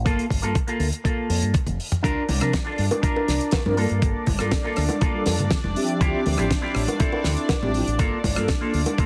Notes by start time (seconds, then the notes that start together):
0.05 A#3 F4 A4, kick, closed hi-hat
0.19 closed hi-hat
0.30 G1, kick, open hi-hat
0.42 G2 A#3 F4 A4, closed hi-hat
0.55 kick, closed hi-hat
0.67 A#3 F4 A4, closed hi-hat
0.80 D2, open hi-hat
0.92 closed hi-hat
1.04 A#3 F4 A4, kick, closed hi-hat
1.30 F2, open hi-hat
1.42 G2, closed hi-hat
1.54 kick, closed hi-hat, high tom
1.67 F1, closed hi-hat, high tom
1.80 open hi-hat
1.92 closed hi-hat, mid tom
2.03 C2 D4 F4 A#4 D5, kick, closed hi-hat
2.29 C2, open hi-hat, high conga
2.40 C3 F3 C4 D4 F4 A#4, cross-stick, closed hi-hat
2.53 kick, snare, closed hi-hat
2.65 D4 F4 A4
2.78 G2, open hi-hat
2.91 closed hi-hat, high bongo, high conga
3.02 D4 F4 A#4, kick, closed hi-hat
3.16 high bongo
3.28 C2, snare, open hi-hat
3.41 closed hi-hat
3.51 kick, snare, closed hi-hat, high bongo
3.65 G2 F3 C4 D4 A#4, high conga
3.76 G3 A#3 F4 A4, open hi-hat
3.89 G2, closed hi-hat
4.02 G1, kick, closed hi-hat
4.26 G1, kick, open hi-hat, high conga
4.39 G2 G3 A#3 F4 A4, cross-stick, closed hi-hat
4.51 kick, snare, closed hi-hat
4.63 A#3 F4 A4
4.76 D2, cross-stick, open hi-hat
4.89 closed hi-hat, high bongo, high conga
5.01 A#3 F4 A4, kick, closed hi-hat
5.14 G3 A#3 F4 A4
5.26 F2 G3 A#3 F4 A4, snare, open hi-hat, high bongo
5.38 G2, closed hi-hat, low conga
5.51 kick, snare, closed hi-hat
5.64 F1, high conga
5.75 F3 C4 G4 E5, open hi-hat
5.88 closed hi-hat
6.00 D2 C4 E4 F4 G4, kick, closed hi-hat
6.26 D2, open hi-hat, high conga
6.37 A1 F3 C4 E4 F4 G4, cross-stick, closed hi-hat
6.51 kick, snare, closed hi-hat
6.62 C4 E4 F4 G4
6.75 A1, cross-stick, open hi-hat
6.87 closed hi-hat, high bongo, high conga
6.99 C4 E4 F4 A4, kick, closed hi-hat
7.12 high bongo
7.24 D2, snare, open hi-hat
7.37 closed hi-hat
7.49 kick, snare, closed hi-hat, high bongo
7.62 A1 F3 C4 E4 G4, high conga
7.74 F3 C4 E4 G4, open hi-hat
7.87 A1, closed hi-hat
7.98 A#3 F4 A4, kick, closed hi-hat
8.24 G1, kick, open hi-hat, high conga
8.36 G2 G3 A#3 F4 A4, cross-stick, closed hi-hat
8.48 kick, snare, closed hi-hat
8.61 A#3 F4 A4
8.74 D2, open hi-hat
8.86 closed hi-hat, high bongo, high conga
8.98 A#3 F4 A4, kick, closed hi-hat